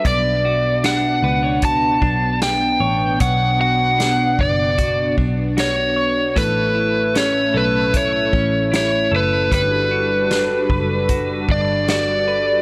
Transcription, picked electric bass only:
\new Staff \with { instrumentName = "Picked electric bass" } { \clef bass \time 4/4 \key b \minor \tempo 4 = 76 b,,4. cis,4 b,,4 a,,8 | b,,4. fis,,4 b,,4. | a,,4. b,,4 a,,4 fis,,8 | g,,4. fis,,4 g,,4. | }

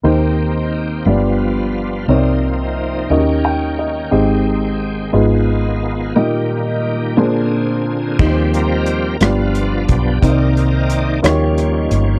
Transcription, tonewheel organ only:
<<
  \new Staff \with { instrumentName = "Tonewheel organ" } { \time 6/8 \key ees \major \tempo 4. = 59 << { g'4. f'4. | ees'4. g''4.~ | g''4. f'4. | <bes, g'>4. aes'4. |
c''8 bes'4 f'4 g'8 | bes'4 r2 | } \\ { c'4. b4. | c'4. des'4. | c'4. ces'4. | bes4. c'4. |
g'8 g'4 d'4. | <c' ees'>4. r4. | } >> }
  \new Staff \with { instrumentName = "Tonewheel organ" } { \clef bass \time 6/8 \key ees \major << { bes4. g4. | bes2. | aes2. | g4. r4. |
<f g c'>4. <f b>4. | <ees bes d''>4. <f g des'>4. | } \\ { ees4. f4.~ | f4. ees4.~ | ees2.~ | ees4. d4. |
r2. | r2. | } >> }
>>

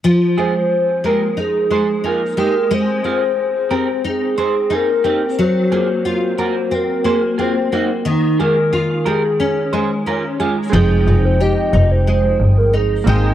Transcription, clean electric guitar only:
\new Staff \with { instrumentName = "Clean electric guitar" } { \time 4/4 \key f \minor \tempo 4 = 90 r8 <f' aes'>16 r8. <g' bes'>16 r8. <aes' c''>16 r16 <f' aes'>16 r16 <ees' g'>16 r16 | r8 <f' aes'>16 r8. <g' bes'>16 r8. <aes' c''>16 r16 <ees' aes'>16 r16 <ees' g'>16 r16 | r8 <f' aes'>16 r8. <ges' bes'>16 r8. <aes' c''>16 r16 <f' aes'>16 r16 <ees' ges'>16 r16 | r8 <f' aes'>16 r8. <g' bes'>16 r8. <aes' c''>16 r16 <f' bes'>16 r16 <f' aes'>16 r16 |
r1 | }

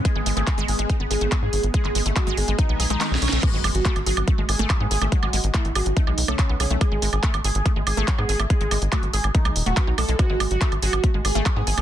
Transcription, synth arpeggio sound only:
\new Staff \with { instrumentName = "Synth arpeggio sound" } { \time 4/4 \key gis \phrygian \tempo 4 = 142 gis16 gis16 gis16 a16 gis16 gis16 r16 gis16 dis'16 b16 gis16 a16 gis16 r8. | gis16 gis16 gis16 a16 gis16 gis16 r16 gis16 dis'16 b16 gis'16 gis16 gis16 r8 a16 | gis16 gis16 gis16 r16 a16 r16 gis'16 r16 a16 gis16 r16 a16 fis16 b16 gis'16 a16 | gis16 gis16 gis16 r16 a16 r16 gis'16 r16 a16 gis16 r16 a16 fis16 b16 gis'16 a16 |
gis16 gis16 gis16 r16 a16 r16 gis'16 r16 a16 gis16 r16 a16 fis16 b16 gis'16 a16 | gis16 gis16 gis16 r16 a16 r16 gis'16 r16 a16 gis16 r16 a16 b16 dis'16 gis16 gis16 | gis16 gis16 gis16 r16 a16 r16 gis'16 r16 a16 gis16 r16 a16 fis16 b16 gis'16 a16 | }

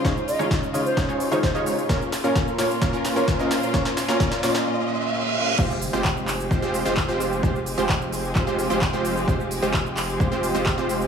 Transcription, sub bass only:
\new Staff \with { instrumentName = "Sub bass" } { \clef bass \time 4/4 \key f \minor \tempo 4 = 130 r1 | r1 | r1 | f,,8. f,,4~ f,,16 f,,16 f,,8 f,,8 f,,8. |
f,,8. f,,4~ f,,16 f,,16 f,,8 f,,8 f,,8. | f,,8. f,,4~ f,,16 f,,16 f,,8 f,,8 f,,8. | }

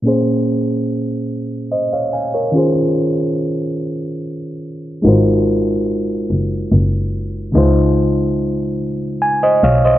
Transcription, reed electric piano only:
\new Staff \with { instrumentName = "Reed electric piano" } { \time 6/8 \key bes \minor \tempo 4. = 48 << { r2 <c'' ees''>16 <des'' f''>16 <f'' aes''>16 <bes' des''>16~ | <bes' des''>16 r2 r8. | r2. | r2 aes''16 <c'' ees''>16 <des'' f''>16 <c'' ees''>16 | } \\ { <bes, bes des' aes' c''>2. | <ees des' f' aes' c''>2. | <aes ees' f' ges' bes' c''>2. | <des aes ees' f' c''>2. | } >> }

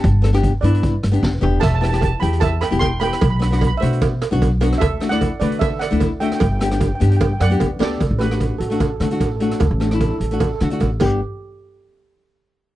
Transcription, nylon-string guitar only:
\new Staff \with { instrumentName = "Nylon-string guitar" } { \time 4/4 \key d \mixolydian \tempo 4 = 150 r8 <b d' a'>16 <b d' g'>8 r16 <b d' e'>8. r8 <b d' g'>8 r16 <b d' g'>8 | r8 <b e' g'>16 <b e' g'>8 r16 <b e' g'>8. r8 <b e' g'>8 r16 <b e' g'>8 | r8 <b d' fis'>16 <b d' fis'>8 r16 <a d' fis'>8. r8 <b d' fis'>8 r16 <b d' fis'>8 | r8 <a d' fis'>16 <a d' e'>8 r16 <a d' fis'>8. r8 <a d' e'>8 r16 <a d' fis'>8 |
r8 <b d' g'>16 <b d' g'>8 r16 <b d' g'>8. r8 <b d' g'>8 r16 <b d' g'>8 | r8 <a d' fis'>16 <a d' fis'>8 r8 <a d' fis'>8 r16 <a d' fis'>16 <a d' fis'>8 r16 <a d' fis'>8 | r8 <a d' fis'>16 <a d' e'>8 r8 <a d' fis'>8 r16 <a d' fis'>16 <a d' fis'>8 r16 <b d' g'>8 | r1 | }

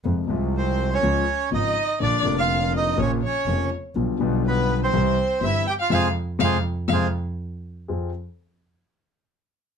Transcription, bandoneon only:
\new Staff \with { instrumentName = "Bandoneon" } { \time 4/4 \key f \minor \tempo 4 = 123 r4 <c' c''>8. <des' des''>4~ <des' des''>16 <ees' ees''>4 | <d' d''>8. <f' f''>8. <ees' ees''>8 <des' des''>8 <des' des''>4 r8 | r4 <b b'>8. <c' c''>4~ <c' c''>16 <e' e''>8 <g' g''>16 <f' f''>16 | <f' aes' c''>8 r8 <f' aes' c''>8 r8 <f' aes' c''>8 r4. |
r1 | }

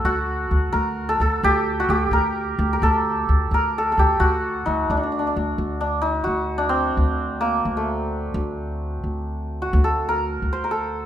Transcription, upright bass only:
\new Staff \with { instrumentName = "Upright bass" } { \clef bass \time 6/8 \tempo 4. = 87 d,4 d,8 d,4 d,8 | d,4 d,8 d,4 d,8 | d,4 d,8 d,4 d,8 | d,4 d,8 d,4 d,8 |
d,4. d,4. | d,4. d,4. | d,4. d,4. | d,4. d,4. | }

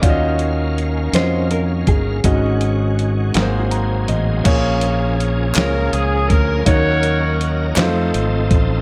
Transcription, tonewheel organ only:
\new Staff \with { instrumentName = "Tonewheel organ" } { \time 6/8 \key bes \minor \tempo 4. = 54 <ees bes des' f''>2. | <ees aes des' ges'>4. <ges bes c' aes'>4. | <f bes des' aes'>2. | <ges des' ees' bes'>4. <f c' ees' a'>4. | }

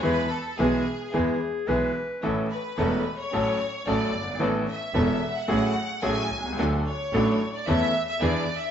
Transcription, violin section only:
\new Staff \with { instrumentName = "Violin section" } { \time 4/4 \key a \major \tempo 4 = 110 b'8 a'8 gis'4 r2 | r8 b'4~ b'16 cis''4~ cis''16 d''4 | r8 e''4~ e''16 fis''4~ fis''16 gis''4 | r8 cis''4~ cis''16 d''16 e''8. e''16 \tuplet 3/2 { d''4 e''8 } | }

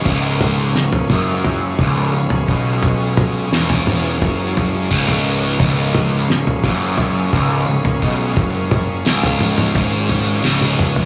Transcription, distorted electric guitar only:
\new Staff \with { instrumentName = "Distorted electric guitar" } { \clef bass \time 4/4 \key des \mixolydian \tempo 4 = 87 des,4 des,8 ges,4 des,8 des,8 ces8~ | ces4 fes,4 ges,4 des,4 | des,4 des,8 ges,4 des,8 des,8 ces8 | ges,4 des,4 aes,4 des,4 | }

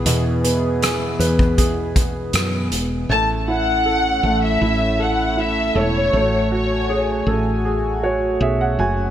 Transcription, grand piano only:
\new Staff \with { instrumentName = "Grand piano" } { \time 4/4 \key a \major \tempo 4 = 79 << { r1 | r1 | r2 r8 cis''8 e''16 fis''16 gis''8 | } \\ { b,8 b8 gis'8 b'8 gis'2 | a8 e'8 a'8 a8 e'8 a'8 e'8 a'8 | a8 fis'8 gis'8 a'8 gis'8 fis'8 gis'8 fis'8 | } >> }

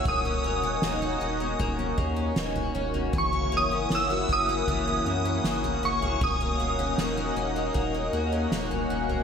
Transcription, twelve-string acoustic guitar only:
\new Staff \with { instrumentName = "Twelve-string acoustic guitar" } { \time 4/4 \key dis \phrygian \tempo 4 = 78 ais16 cis'16 ais16 cis'16 ais16 fis'16 cis'16 ais16 ais16 cis'16 ais16 cis'16 ais16 fis'16 cis'16 ais16 | e16 cis'16 ais16 cis'16 ais16 fis'16 cis'16 ais16 e16 cis'16 ais16 cis'16 ais16 fis'16 cis'16 ais16 | ais16 cis'16 ais16 cis'16 ais16 fis'16 cis'16 ais16 ais16 cis'16 ais16 cis'16 ais16 fis'16 cis'16 ais16 | }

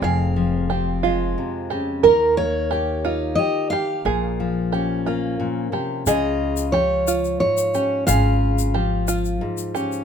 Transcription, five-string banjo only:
\new Staff \with { instrumentName = "Five-string banjo" } { \time 3/4 \key des \lydian \tempo 4 = 90 aes'4 g'8 f'4 g'8 | bes'4 g'8 f'4 g'8 | aes'4 g'8 f'4 g'8 | aes'4 g'8 f'4 g'8 |
aes'4 g'8 f'4 g'8 | }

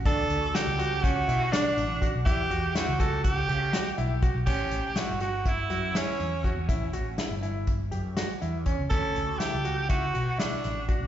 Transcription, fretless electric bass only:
\new Staff \with { instrumentName = "Fretless electric bass" } { \clef bass \time 9/8 \key a \mixolydian \tempo 4. = 81 d,8 d,8 r16 cis,4~ cis,16 b,8 r8 a,,8. b,,16 | e,8 e,8 r16 cis,4~ cis,16 cis8 r8 b,,8. b,,16 | a,,8 a,,8 r16 g,,4~ g,,16 fis,8 r8 e,8. e,16 | a,,8 a,,8 r16 g,,4~ g,,16 fis,8 r8 e,8. cis,16 |
d,8 d,8 r16 cis,4~ cis,16 b,8 r8 a,,8. a,,16 | }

